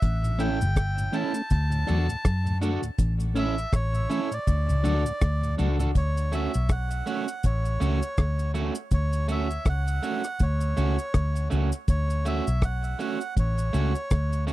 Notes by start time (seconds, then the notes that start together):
Already playing: E5
0.02 A1, kick, closed hi-hat, cabasa
0.23 A2, closed hi-hat, cabasa
0.38 E3 A3 C#4 E4 A4 G5, closed hi-hat, cabasa
0.60 G1 A2, closed hi-hat, cabasa
0.76 kick, cross-stick, closed hi-hat, cabasa
0.97 A2, closed hi-hat, cabasa
1.12 E3 A3 C#4 E4 A4 A5, closed hi-hat, cabasa
1.33 A3 C#4, muted clean electric guitar stroke, closed hi-hat, cabasa
1.50 D2 A5, kick, closed hi-hat, cabasa
1.70 D2 A2, closed hi-hat, cabasa
1.87 E2 F#3 A3 D4 F#4 A4, closed hi-hat, cabasa
2.08 D2 A2, closed hi-hat, cabasa
2.25 F#2, kick, cross-stick, closed hi-hat, cabasa
2.45 D2 A2, closed hi-hat, cabasa
2.61 F#3 A3 D4 F#4 A4, closed hi-hat, cabasa
2.82 D2 A2, closed hi-hat, cabasa
2.98 A1, kick, closed hi-hat, cabasa
3.18 A2, closed hi-hat, cabasa
3.34 E3 A3 C#4 E4 A4, closed hi-hat, cabasa
3.38 E5
3.58 closed hi-hat, cabasa
3.73 A1 C#5, kick, cross-stick, closed hi-hat, cabasa
3.93 A2, closed hi-hat, cabasa
4.09 E3 A3 C#4 E4 A4, closed hi-hat, cabasa
4.31 A2 D5, closed hi-hat, cabasa
4.47 D2, kick, closed hi-hat, cabasa
4.68 C#2 D2 A2, closed hi-hat, cabasa
4.83 D2 F#3 A3 D4 F#4 A4, closed hi-hat, cabasa
5.04 D2 A2, closed hi-hat, cabasa
5.21 D2, kick, cross-stick, closed hi-hat, cabasa
5.41 D2 A2, closed hi-hat, cabasa
5.57 C#2 F#3 A3 D4 F#4 A4, closed hi-hat, cabasa
5.79 D2 A2 D4 F#4 A4, closed hi-hat, cabasa
5.95 D2 C#5, kick, closed hi-hat, cabasa
6.17 closed hi-hat, cabasa
6.32 A3 C#4 F#4 E5, closed hi-hat, cabasa
6.54 B1, closed hi-hat, cabasa
6.69 F#5, kick, cross-stick, closed hi-hat, cabasa
6.91 closed hi-hat, cabasa
7.06 A3 C#4 F#4 F#5, closed hi-hat, cabasa
7.28 closed hi-hat, cabasa
7.43 A1 C#5, kick, closed hi-hat, cabasa
7.65 closed hi-hat, cabasa
7.80 C#2 A3 C#4 F#4, closed hi-hat, cabasa
8.02 closed hi-hat, cabasa
8.18 D2, kick, cross-stick, closed hi-hat, cabasa
8.39 closed hi-hat, cabasa
8.54 A3 C#4 F#4, closed hi-hat, cabasa
8.75 closed hi-hat, cabasa
8.91 D2 C#5, kick, closed hi-hat, cabasa
9.13 closed hi-hat, cabasa
9.28 A3 C#4 F#4 E5, closed hi-hat, cabasa
9.51 closed hi-hat, cabasa
9.65 C#2 F#5, kick, cross-stick, closed hi-hat, cabasa
9.87 closed hi-hat, cabasa
10.03 A3 C#4 F#4, closed hi-hat, cabasa
10.24 cross-stick, closed hi-hat, cabasa
10.39 D2 C#5, kick, closed hi-hat, cabasa
10.61 closed hi-hat, cabasa
10.77 C#2 A3 C#4 F#4, closed hi-hat, cabasa
10.99 closed hi-hat, cabasa
11.14 D2, kick, cross-stick, closed hi-hat, cabasa
11.35 closed hi-hat, cabasa
11.50 C#2 A3 C#4 F#4, closed hi-hat, cabasa
11.72 closed hi-hat, cabasa
11.88 D2 C#5, kick, closed hi-hat, cabasa
12.10 closed hi-hat, cabasa
12.25 A3 C#4 F#4 E5, closed hi-hat, cabasa
12.47 B1, closed hi-hat, cabasa
12.62 F#5, kick, cross-stick, closed hi-hat, cabasa
12.83 closed hi-hat, cabasa
12.99 A3 C#4 F#4 F#5, closed hi-hat, cabasa
13.20 closed hi-hat, cabasa
13.37 A1 C#5, kick, closed hi-hat, cabasa
13.57 closed hi-hat, cabasa
13.73 C#2 A3 C#4 F#4, closed hi-hat, cabasa
13.95 closed hi-hat, cabasa
14.11 D2, kick, cross-stick, closed hi-hat, cabasa
14.33 closed hi-hat, cabasa
14.47 A3 C#4 F#4, closed hi-hat, cabasa